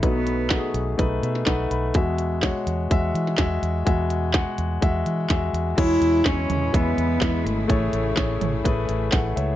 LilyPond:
<<
  \new Staff \with { instrumentName = "Grand piano" } { \time 4/4 \key e \mixolydian \tempo 4 = 125 <a dis' b'>8 r8 <a dis' fis' gis'>8 r8 <a dis' b'>8 e''8 <a dis' b' fis''>8 b''8 | <gis fis' e''>8 r8 <gis fis' cis''>8 r8 <gis fis' e''>8 r8 <gis fis' e''>8 r8 | <gis fis' e''>8 r8 <gis fis' fis''>8 r8 <gis fis' e''>8 r8 <gis fis' e''>8 r8 | <gis e' cis''>8 r8 <gis e' cis''>8 r8 <gis e' e''>8 r8 <gis e' e''>8 r8 |
<a gis' cis''>8 r8 <a gis' cis''>8 r8 <a gis' b'>8 r8 fis''8 <cis'' e''>8 | }
  \new Staff \with { instrumentName = "Grand piano" } { \clef bass \time 4/4 \key e \mixolydian <b, fis>4. r2 r8 | b,4. r2 r8 | b,4. r2 r8 | b,4. r2 r8 |
<a, e>4. r2 r8 | }
  \new Staff \with { instrumentName = "Cello" } { \time 4/4 \key e \mixolydian b4. r2 r8 | r1 | r1 | e'4 cis'4 b4. a8~ |
a4. r2 r8 | }
  \new Staff \with { instrumentName = "String section" } { \time 4/4 \key e \mixolydian << { r1 | r1 | r1 | <cis e e' gis'>1~ |
<cis e e' gis'>1 | } \\ { r1 | r1 | r1 | b1 |
a1 | } >> }
  \new Staff \with { instrumentName = "Fingered electric bass" } { \clef bass \time 4/4 \key e \mixolydian b,,4~ b,,16 r16 b,,8 b,,8 b,8 b,,8 b,,8 | e,4~ e,16 r16 e,8 e,8 e8 e,8 e,8 | e,4~ e,16 r16 e,8 e,8 e8 e,8 e,8 | e,8 e,8 e,8 e,8 e,8 e,8 e,8 gis,,8 |
a,,8 a,,8 a,,8 a,,8 a,,8 a,,8 a,,8 cis,8 | }
  \new DrumStaff \with { instrumentName = "Drums" } \drummode { \time 4/4 <hh bd>8 hh8 <hc hh bd sn>8 hh8 <hh bd>8 hh16 sn16 <hc hh bd sn>8 hh8 | <hh bd>8 hh8 <hc hh bd sn>8 hh8 <hh bd>8 hh16 sn16 <hc hh bd sn>8 hh8 | <hh bd>8 hh8 <hc hh bd sn>8 hh8 <hh bd>8 hh8 <hc hh bd sn>8 hh8 | <cymc hh bd>8 hh8 <hc hh bd sn>8 <hh tomfh>8 <hh bd>8 hh8 <hc hh bd sn>8 hh8 |
<hh bd>8 hh8 <hc hh bd sn>8 <hh tomfh>8 <hh bd>8 hh8 <hc hh bd sn>8 hh8 | }
>>